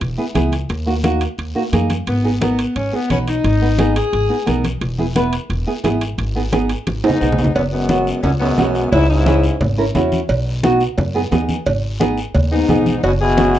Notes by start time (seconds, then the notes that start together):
0.01 E1, high conga, high timbale, long guiro
0.18 B3 E4 G#4
0.35 C#2 B3 E4 G#4, high conga, high timbale, short guiro
0.52 high timbale, short guiro
0.69 D#2, high conga, high timbale, long guiro
0.86 A#3 D#4 F#4
1.03 A#3 D#4 F#4, high conga, high timbale, short guiro
1.21 high timbale, short guiro
1.38 D#2, high conga, high timbale, long guiro
1.55 A#3 D#4 F#4
1.72 F#2 A#3 D#4 G#4, high conga, high timbale, short guiro
1.90 high conga, high timbale, short guiro
2.07 G#1 B3, high conga, high timbale, long guiro
2.24 B3 D#4 G#4
2.40 B3 D#4 A#4, high conga, high timbale, short guiro
2.59 high timbale, short guiro
2.76 G#1 C#4, high conga, high timbale, long guiro
2.92 B3 D#4 G#4
3.09 B1 B3 C#4 D#4 B4, high conga, high timbale, short guiro
3.27 D#4, high timbale, short guiro
3.44 G#1, high conga, high timbale, long guiro
3.62 B3 D#4 B4
3.79 B3 D#4 G#4, high conga, high timbale, short guiro
3.96 G#4, high timbale, short guiro
4.13 G#1, high conga, high timbale, long guiro
4.29 B3 D#4 G#4
4.46 B1 B3 D#4 A#4, high conga, high timbale, short guiro
4.64 high conga, high timbale, short guiro
4.81 E1, high conga, high timbale, long guiro
4.98 B3 E4 G#4, high conga
5.15 B3 E4 B4, high conga, high timbale, short guiro
5.33 high timbale, short guiro
5.50 E1, high conga, high timbale, long guiro
5.67 B3 E4 G#4
5.84 G#1 B3 E4 G#4, high conga, high timbale, low timbale, short guiro
6.01 high timbale, short guiro
6.18 G#1, high conga, high timbale, long guiro
6.35 B3 D#4 G#4
6.52 B3 D#4 G#4, high conga, high timbale, short guiro
6.69 high timbale, short guiro
6.87 G#1, high conga, high timbale, long guiro
7.04 G#2 B3 D#4 G#4, high timbale
7.10 low conga
7.21 B1 B3 D#4 G#4, short guiro
7.32 low conga
7.38 low timbale, short guiro
7.44 low conga
7.55 F#1 F#2 F#3 B3, cowbell, high conga, long guiro
7.72 F#2 G#3 B3
7.89 B3 C#4 F#4, high conga, short guiro
8.07 short guiro
8.23 C#2 F#2 F#3 C#4, cowbell, high conga, low conga, long guiro
8.40 F#2 G#3 B3 C#4 F#4
8.58 B1 B3 C#4 F#4, high conga, low timbale, short guiro
8.75 short guiro
8.92 C#2 G#2 C#4 E4, cowbell, high conga, low conga, long guiro
9.09 G#2 C#4 E4
9.26 C#4 E4 G#4, high conga, short guiro
9.43 short guiro
9.61 G#1, cowbell, high conga, low conga, long guiro
9.78 C#4 E4 A#4
9.95 E2 C#4 E4 F#4, high conga, low conga, low timbale, short guiro
10.12 high conga, short guiro
10.29 B1, cowbell, high conga, long guiro
10.63 B3 D#4 F#4, high conga, short guiro
10.80 short guiro
10.98 F#2, cowbell, high conga, low conga, long guiro
11.14 B3 D#4 G#4
11.31 D#2 B3 D#4 G#4, high conga, low timbale, short guiro
11.49 high conga, short guiro
11.66 G#1, cowbell, high conga, low conga, long guiro
12.00 B3 D#4 G#4, high conga, short guiro
12.18 short guiro
12.35 D#2, cowbell, high conga, low conga, long guiro
12.51 G#2 B3 D#4 G#4
12.69 B1 B3 D#4 G#4, high conga, low conga, short guiro
12.86 high conga, short guiro
13.03 F#1 B2 C#4 F#4, cowbell, high conga, long guiro
13.21 B2 E4 G#4
13.37 B3 C#4 F#4, high conga, short guiro
13.55 short guiro